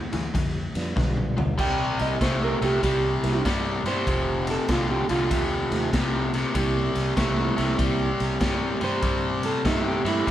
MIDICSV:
0, 0, Header, 1, 6, 480
1, 0, Start_track
1, 0, Tempo, 620476
1, 1230, Time_signature, 4, 2, 24, 8
1, 7975, End_track
2, 0, Start_track
2, 0, Title_t, "Clean electric guitar"
2, 0, Program_c, 0, 27
2, 1239, Note_on_c, 0, 79, 88
2, 1545, Note_off_c, 0, 79, 0
2, 1560, Note_on_c, 0, 75, 73
2, 1710, Note_off_c, 0, 75, 0
2, 1719, Note_on_c, 0, 72, 80
2, 1869, Note_off_c, 0, 72, 0
2, 1888, Note_on_c, 0, 70, 73
2, 2034, Note_off_c, 0, 70, 0
2, 2048, Note_on_c, 0, 67, 80
2, 2191, Note_off_c, 0, 67, 0
2, 2200, Note_on_c, 0, 67, 76
2, 2660, Note_off_c, 0, 67, 0
2, 2997, Note_on_c, 0, 72, 95
2, 3459, Note_off_c, 0, 72, 0
2, 3487, Note_on_c, 0, 69, 73
2, 3634, Note_off_c, 0, 69, 0
2, 3648, Note_on_c, 0, 65, 73
2, 3793, Note_off_c, 0, 65, 0
2, 3796, Note_on_c, 0, 67, 73
2, 3948, Note_off_c, 0, 67, 0
2, 3952, Note_on_c, 0, 65, 86
2, 4207, Note_off_c, 0, 65, 0
2, 6840, Note_on_c, 0, 72, 97
2, 7300, Note_off_c, 0, 72, 0
2, 7315, Note_on_c, 0, 69, 85
2, 7467, Note_off_c, 0, 69, 0
2, 7479, Note_on_c, 0, 63, 76
2, 7629, Note_off_c, 0, 63, 0
2, 7643, Note_on_c, 0, 67, 76
2, 7792, Note_off_c, 0, 67, 0
2, 7793, Note_on_c, 0, 64, 91
2, 7975, Note_off_c, 0, 64, 0
2, 7975, End_track
3, 0, Start_track
3, 0, Title_t, "Tonewheel organ"
3, 0, Program_c, 1, 16
3, 582, Note_on_c, 1, 55, 57
3, 586, Note_on_c, 1, 62, 49
3, 587, Note_on_c, 1, 59, 49
3, 589, Note_on_c, 1, 65, 59
3, 1196, Note_off_c, 1, 55, 0
3, 1198, Note_off_c, 1, 62, 0
3, 1199, Note_off_c, 1, 59, 0
3, 1200, Note_off_c, 1, 65, 0
3, 2499, Note_on_c, 1, 55, 61
3, 2504, Note_on_c, 1, 58, 58
3, 2507, Note_on_c, 1, 64, 53
3, 2508, Note_on_c, 1, 60, 58
3, 2509, Note_on_c, 1, 67, 64
3, 2651, Note_off_c, 1, 55, 0
3, 2654, Note_off_c, 1, 58, 0
3, 2655, Note_off_c, 1, 60, 0
3, 2655, Note_off_c, 1, 64, 0
3, 2656, Note_off_c, 1, 67, 0
3, 4418, Note_on_c, 1, 53, 65
3, 4419, Note_on_c, 1, 57, 58
3, 4422, Note_on_c, 1, 60, 54
3, 4425, Note_on_c, 1, 63, 62
3, 4425, Note_on_c, 1, 65, 80
3, 4570, Note_off_c, 1, 53, 0
3, 4571, Note_off_c, 1, 57, 0
3, 4572, Note_off_c, 1, 60, 0
3, 4574, Note_off_c, 1, 63, 0
3, 4574, Note_off_c, 1, 65, 0
3, 5066, Note_on_c, 1, 55, 55
3, 5070, Note_on_c, 1, 58, 55
3, 5070, Note_on_c, 1, 60, 54
3, 5071, Note_on_c, 1, 64, 56
3, 5072, Note_on_c, 1, 67, 66
3, 5348, Note_off_c, 1, 55, 0
3, 5350, Note_off_c, 1, 58, 0
3, 5350, Note_off_c, 1, 60, 0
3, 5351, Note_off_c, 1, 64, 0
3, 5351, Note_off_c, 1, 67, 0
3, 5542, Note_on_c, 1, 55, 68
3, 5546, Note_on_c, 1, 60, 66
3, 5546, Note_on_c, 1, 64, 62
3, 5548, Note_on_c, 1, 58, 58
3, 5553, Note_on_c, 1, 67, 80
3, 6275, Note_off_c, 1, 55, 0
3, 6277, Note_off_c, 1, 60, 0
3, 6277, Note_off_c, 1, 64, 0
3, 6278, Note_off_c, 1, 58, 0
3, 6281, Note_off_c, 1, 67, 0
3, 7769, Note_on_c, 1, 55, 61
3, 7778, Note_on_c, 1, 58, 63
3, 7778, Note_on_c, 1, 60, 65
3, 7778, Note_on_c, 1, 67, 72
3, 7780, Note_on_c, 1, 64, 58
3, 7926, Note_off_c, 1, 55, 0
3, 7930, Note_off_c, 1, 58, 0
3, 7930, Note_off_c, 1, 60, 0
3, 7931, Note_off_c, 1, 67, 0
3, 7932, Note_off_c, 1, 64, 0
3, 7975, End_track
4, 0, Start_track
4, 0, Title_t, "Overdriven electric guitar"
4, 0, Program_c, 2, 29
4, 98, Note_on_c, 2, 43, 77
4, 101, Note_on_c, 2, 52, 74
4, 251, Note_off_c, 2, 43, 0
4, 253, Note_off_c, 2, 52, 0
4, 263, Note_on_c, 2, 43, 76
4, 267, Note_on_c, 2, 50, 83
4, 713, Note_off_c, 2, 43, 0
4, 715, Note_off_c, 2, 50, 0
4, 743, Note_on_c, 2, 43, 78
4, 750, Note_on_c, 2, 50, 80
4, 1027, Note_off_c, 2, 43, 0
4, 1031, Note_off_c, 2, 50, 0
4, 1058, Note_on_c, 2, 43, 76
4, 1061, Note_on_c, 2, 50, 78
4, 1211, Note_off_c, 2, 43, 0
4, 1212, Note_off_c, 2, 50, 0
4, 1223, Note_on_c, 2, 48, 80
4, 1223, Note_on_c, 2, 55, 89
4, 1672, Note_off_c, 2, 48, 0
4, 1673, Note_off_c, 2, 55, 0
4, 1711, Note_on_c, 2, 48, 76
4, 1714, Note_on_c, 2, 57, 87
4, 1991, Note_off_c, 2, 48, 0
4, 1992, Note_off_c, 2, 57, 0
4, 2024, Note_on_c, 2, 48, 73
4, 2025, Note_on_c, 2, 57, 80
4, 2174, Note_off_c, 2, 48, 0
4, 2174, Note_off_c, 2, 57, 0
4, 2190, Note_on_c, 2, 48, 75
4, 2191, Note_on_c, 2, 55, 80
4, 2636, Note_off_c, 2, 48, 0
4, 2636, Note_off_c, 2, 55, 0
4, 2671, Note_on_c, 2, 55, 83
4, 2672, Note_on_c, 2, 48, 75
4, 2951, Note_off_c, 2, 48, 0
4, 2951, Note_off_c, 2, 55, 0
4, 2984, Note_on_c, 2, 48, 78
4, 2987, Note_on_c, 2, 55, 87
4, 3133, Note_off_c, 2, 48, 0
4, 3135, Note_off_c, 2, 55, 0
4, 3152, Note_on_c, 2, 41, 83
4, 3153, Note_on_c, 2, 48, 78
4, 3597, Note_off_c, 2, 41, 0
4, 3597, Note_off_c, 2, 48, 0
4, 3621, Note_on_c, 2, 41, 76
4, 3626, Note_on_c, 2, 50, 78
4, 3906, Note_off_c, 2, 41, 0
4, 3908, Note_off_c, 2, 50, 0
4, 3937, Note_on_c, 2, 41, 76
4, 3942, Note_on_c, 2, 50, 80
4, 4090, Note_off_c, 2, 41, 0
4, 4092, Note_off_c, 2, 50, 0
4, 4098, Note_on_c, 2, 41, 80
4, 4106, Note_on_c, 2, 48, 92
4, 4550, Note_off_c, 2, 41, 0
4, 4553, Note_off_c, 2, 48, 0
4, 4586, Note_on_c, 2, 41, 76
4, 4592, Note_on_c, 2, 48, 91
4, 4868, Note_off_c, 2, 41, 0
4, 4871, Note_off_c, 2, 48, 0
4, 4901, Note_on_c, 2, 41, 75
4, 4904, Note_on_c, 2, 48, 94
4, 5052, Note_off_c, 2, 41, 0
4, 5053, Note_off_c, 2, 48, 0
4, 5062, Note_on_c, 2, 48, 85
4, 5066, Note_on_c, 2, 55, 95
4, 5512, Note_off_c, 2, 48, 0
4, 5513, Note_off_c, 2, 55, 0
4, 5543, Note_on_c, 2, 48, 79
4, 5545, Note_on_c, 2, 57, 94
4, 5827, Note_off_c, 2, 48, 0
4, 5828, Note_off_c, 2, 57, 0
4, 5851, Note_on_c, 2, 48, 79
4, 5852, Note_on_c, 2, 57, 82
4, 6007, Note_off_c, 2, 48, 0
4, 6007, Note_off_c, 2, 57, 0
4, 6020, Note_on_c, 2, 48, 65
4, 6024, Note_on_c, 2, 55, 90
4, 6471, Note_off_c, 2, 48, 0
4, 6473, Note_off_c, 2, 55, 0
4, 6498, Note_on_c, 2, 48, 81
4, 6507, Note_on_c, 2, 55, 89
4, 6785, Note_off_c, 2, 48, 0
4, 6789, Note_off_c, 2, 55, 0
4, 6812, Note_on_c, 2, 48, 69
4, 6818, Note_on_c, 2, 55, 84
4, 6967, Note_off_c, 2, 48, 0
4, 6970, Note_off_c, 2, 55, 0
4, 6983, Note_on_c, 2, 48, 72
4, 6986, Note_on_c, 2, 55, 87
4, 7433, Note_off_c, 2, 48, 0
4, 7434, Note_off_c, 2, 55, 0
4, 7463, Note_on_c, 2, 48, 83
4, 7466, Note_on_c, 2, 57, 87
4, 7747, Note_off_c, 2, 48, 0
4, 7749, Note_off_c, 2, 57, 0
4, 7773, Note_on_c, 2, 48, 76
4, 7775, Note_on_c, 2, 57, 89
4, 7928, Note_off_c, 2, 48, 0
4, 7929, Note_off_c, 2, 57, 0
4, 7943, Note_on_c, 2, 48, 70
4, 7946, Note_on_c, 2, 55, 86
4, 7975, Note_off_c, 2, 48, 0
4, 7975, Note_off_c, 2, 55, 0
4, 7975, End_track
5, 0, Start_track
5, 0, Title_t, "Fingered electric bass"
5, 0, Program_c, 3, 33
5, 101, Note_on_c, 3, 38, 76
5, 236, Note_off_c, 3, 38, 0
5, 271, Note_on_c, 3, 41, 81
5, 520, Note_off_c, 3, 41, 0
5, 579, Note_on_c, 3, 41, 81
5, 714, Note_off_c, 3, 41, 0
5, 748, Note_on_c, 3, 35, 83
5, 1231, Note_off_c, 3, 35, 0
5, 1231, Note_on_c, 3, 36, 90
5, 1480, Note_off_c, 3, 36, 0
5, 1542, Note_on_c, 3, 36, 69
5, 1676, Note_off_c, 3, 36, 0
5, 1710, Note_on_c, 3, 36, 79
5, 1959, Note_off_c, 3, 36, 0
5, 2022, Note_on_c, 3, 36, 84
5, 2156, Note_off_c, 3, 36, 0
5, 2188, Note_on_c, 3, 36, 86
5, 2438, Note_off_c, 3, 36, 0
5, 2501, Note_on_c, 3, 36, 77
5, 2635, Note_off_c, 3, 36, 0
5, 2668, Note_on_c, 3, 43, 83
5, 2917, Note_off_c, 3, 43, 0
5, 2971, Note_on_c, 3, 43, 77
5, 3109, Note_off_c, 3, 43, 0
5, 3148, Note_on_c, 3, 29, 83
5, 3532, Note_off_c, 3, 29, 0
5, 3626, Note_on_c, 3, 36, 72
5, 3876, Note_off_c, 3, 36, 0
5, 3942, Note_on_c, 3, 36, 79
5, 4075, Note_off_c, 3, 36, 0
5, 4108, Note_on_c, 3, 39, 89
5, 4358, Note_off_c, 3, 39, 0
5, 4416, Note_on_c, 3, 39, 76
5, 4552, Note_off_c, 3, 39, 0
5, 4589, Note_on_c, 3, 36, 80
5, 4972, Note_off_c, 3, 36, 0
5, 5066, Note_on_c, 3, 36, 82
5, 5316, Note_off_c, 3, 36, 0
5, 5378, Note_on_c, 3, 36, 75
5, 5513, Note_off_c, 3, 36, 0
5, 5545, Note_on_c, 3, 36, 78
5, 5796, Note_off_c, 3, 36, 0
5, 5863, Note_on_c, 3, 36, 81
5, 5996, Note_off_c, 3, 36, 0
5, 6027, Note_on_c, 3, 36, 85
5, 6277, Note_off_c, 3, 36, 0
5, 6345, Note_on_c, 3, 36, 85
5, 6477, Note_off_c, 3, 36, 0
5, 6503, Note_on_c, 3, 43, 87
5, 6755, Note_off_c, 3, 43, 0
5, 6819, Note_on_c, 3, 43, 78
5, 6954, Note_off_c, 3, 43, 0
5, 6984, Note_on_c, 3, 43, 92
5, 7369, Note_off_c, 3, 43, 0
5, 7464, Note_on_c, 3, 43, 79
5, 7715, Note_off_c, 3, 43, 0
5, 7769, Note_on_c, 3, 43, 86
5, 7908, Note_off_c, 3, 43, 0
5, 7950, Note_on_c, 3, 46, 89
5, 7975, Note_off_c, 3, 46, 0
5, 7975, End_track
6, 0, Start_track
6, 0, Title_t, "Drums"
6, 97, Note_on_c, 9, 51, 55
6, 101, Note_on_c, 9, 38, 31
6, 175, Note_off_c, 9, 51, 0
6, 179, Note_off_c, 9, 38, 0
6, 269, Note_on_c, 9, 36, 86
6, 271, Note_on_c, 9, 51, 81
6, 275, Note_on_c, 9, 38, 33
6, 347, Note_off_c, 9, 36, 0
6, 348, Note_off_c, 9, 51, 0
6, 352, Note_off_c, 9, 38, 0
6, 581, Note_on_c, 9, 51, 58
6, 585, Note_on_c, 9, 38, 31
6, 658, Note_off_c, 9, 51, 0
6, 662, Note_off_c, 9, 38, 0
6, 748, Note_on_c, 9, 36, 86
6, 753, Note_on_c, 9, 38, 53
6, 826, Note_off_c, 9, 36, 0
6, 831, Note_off_c, 9, 38, 0
6, 907, Note_on_c, 9, 47, 56
6, 985, Note_off_c, 9, 47, 0
6, 1067, Note_on_c, 9, 43, 85
6, 1145, Note_off_c, 9, 43, 0
6, 1227, Note_on_c, 9, 49, 101
6, 1228, Note_on_c, 9, 36, 80
6, 1304, Note_off_c, 9, 49, 0
6, 1305, Note_off_c, 9, 36, 0
6, 1542, Note_on_c, 9, 51, 53
6, 1546, Note_on_c, 9, 38, 32
6, 1619, Note_off_c, 9, 51, 0
6, 1623, Note_off_c, 9, 38, 0
6, 1709, Note_on_c, 9, 36, 76
6, 1711, Note_on_c, 9, 51, 77
6, 1714, Note_on_c, 9, 38, 96
6, 1787, Note_off_c, 9, 36, 0
6, 1788, Note_off_c, 9, 51, 0
6, 1792, Note_off_c, 9, 38, 0
6, 2028, Note_on_c, 9, 51, 53
6, 2031, Note_on_c, 9, 38, 30
6, 2105, Note_off_c, 9, 51, 0
6, 2109, Note_off_c, 9, 38, 0
6, 2190, Note_on_c, 9, 36, 76
6, 2192, Note_on_c, 9, 51, 80
6, 2196, Note_on_c, 9, 38, 33
6, 2267, Note_off_c, 9, 36, 0
6, 2269, Note_off_c, 9, 51, 0
6, 2273, Note_off_c, 9, 38, 0
6, 2503, Note_on_c, 9, 51, 54
6, 2506, Note_on_c, 9, 38, 29
6, 2580, Note_off_c, 9, 51, 0
6, 2584, Note_off_c, 9, 38, 0
6, 2671, Note_on_c, 9, 36, 77
6, 2672, Note_on_c, 9, 51, 77
6, 2676, Note_on_c, 9, 38, 96
6, 2748, Note_off_c, 9, 36, 0
6, 2750, Note_off_c, 9, 51, 0
6, 2754, Note_off_c, 9, 38, 0
6, 2983, Note_on_c, 9, 51, 55
6, 2987, Note_on_c, 9, 38, 26
6, 3061, Note_off_c, 9, 51, 0
6, 3064, Note_off_c, 9, 38, 0
6, 3149, Note_on_c, 9, 36, 91
6, 3151, Note_on_c, 9, 51, 78
6, 3226, Note_off_c, 9, 36, 0
6, 3228, Note_off_c, 9, 51, 0
6, 3458, Note_on_c, 9, 51, 60
6, 3462, Note_on_c, 9, 38, 30
6, 3535, Note_off_c, 9, 51, 0
6, 3539, Note_off_c, 9, 38, 0
6, 3624, Note_on_c, 9, 51, 82
6, 3627, Note_on_c, 9, 36, 86
6, 3628, Note_on_c, 9, 38, 99
6, 3702, Note_off_c, 9, 51, 0
6, 3704, Note_off_c, 9, 36, 0
6, 3705, Note_off_c, 9, 38, 0
6, 3939, Note_on_c, 9, 51, 64
6, 3943, Note_on_c, 9, 38, 33
6, 4016, Note_off_c, 9, 51, 0
6, 4020, Note_off_c, 9, 38, 0
6, 4107, Note_on_c, 9, 36, 78
6, 4107, Note_on_c, 9, 51, 89
6, 4111, Note_on_c, 9, 38, 30
6, 4185, Note_off_c, 9, 36, 0
6, 4185, Note_off_c, 9, 51, 0
6, 4188, Note_off_c, 9, 38, 0
6, 4422, Note_on_c, 9, 51, 55
6, 4426, Note_on_c, 9, 38, 31
6, 4499, Note_off_c, 9, 51, 0
6, 4503, Note_off_c, 9, 38, 0
6, 4589, Note_on_c, 9, 36, 77
6, 4591, Note_on_c, 9, 51, 86
6, 4594, Note_on_c, 9, 38, 113
6, 4666, Note_off_c, 9, 36, 0
6, 4668, Note_off_c, 9, 51, 0
6, 4672, Note_off_c, 9, 38, 0
6, 4901, Note_on_c, 9, 51, 54
6, 4905, Note_on_c, 9, 38, 28
6, 4979, Note_off_c, 9, 51, 0
6, 4983, Note_off_c, 9, 38, 0
6, 5067, Note_on_c, 9, 51, 85
6, 5068, Note_on_c, 9, 36, 84
6, 5144, Note_off_c, 9, 51, 0
6, 5145, Note_off_c, 9, 36, 0
6, 5380, Note_on_c, 9, 51, 60
6, 5384, Note_on_c, 9, 38, 31
6, 5457, Note_off_c, 9, 51, 0
6, 5461, Note_off_c, 9, 38, 0
6, 5546, Note_on_c, 9, 51, 80
6, 5547, Note_on_c, 9, 36, 83
6, 5550, Note_on_c, 9, 38, 99
6, 5623, Note_off_c, 9, 51, 0
6, 5624, Note_off_c, 9, 36, 0
6, 5627, Note_off_c, 9, 38, 0
6, 5863, Note_on_c, 9, 51, 57
6, 5866, Note_on_c, 9, 38, 30
6, 5940, Note_off_c, 9, 51, 0
6, 5944, Note_off_c, 9, 38, 0
6, 6025, Note_on_c, 9, 51, 85
6, 6026, Note_on_c, 9, 36, 84
6, 6103, Note_off_c, 9, 51, 0
6, 6104, Note_off_c, 9, 36, 0
6, 6344, Note_on_c, 9, 51, 50
6, 6348, Note_on_c, 9, 38, 31
6, 6421, Note_off_c, 9, 51, 0
6, 6425, Note_off_c, 9, 38, 0
6, 6504, Note_on_c, 9, 51, 76
6, 6505, Note_on_c, 9, 36, 79
6, 6507, Note_on_c, 9, 38, 108
6, 6581, Note_off_c, 9, 51, 0
6, 6582, Note_off_c, 9, 36, 0
6, 6585, Note_off_c, 9, 38, 0
6, 6815, Note_on_c, 9, 51, 53
6, 6819, Note_on_c, 9, 38, 30
6, 6892, Note_off_c, 9, 51, 0
6, 6896, Note_off_c, 9, 38, 0
6, 6981, Note_on_c, 9, 51, 76
6, 6983, Note_on_c, 9, 36, 87
6, 7058, Note_off_c, 9, 51, 0
6, 7060, Note_off_c, 9, 36, 0
6, 7296, Note_on_c, 9, 51, 56
6, 7300, Note_on_c, 9, 38, 29
6, 7373, Note_off_c, 9, 51, 0
6, 7377, Note_off_c, 9, 38, 0
6, 7465, Note_on_c, 9, 36, 81
6, 7466, Note_on_c, 9, 51, 71
6, 7470, Note_on_c, 9, 38, 110
6, 7543, Note_off_c, 9, 36, 0
6, 7543, Note_off_c, 9, 51, 0
6, 7547, Note_off_c, 9, 38, 0
6, 7783, Note_on_c, 9, 51, 59
6, 7787, Note_on_c, 9, 38, 32
6, 7861, Note_off_c, 9, 51, 0
6, 7864, Note_off_c, 9, 38, 0
6, 7948, Note_on_c, 9, 36, 76
6, 7975, Note_off_c, 9, 36, 0
6, 7975, End_track
0, 0, End_of_file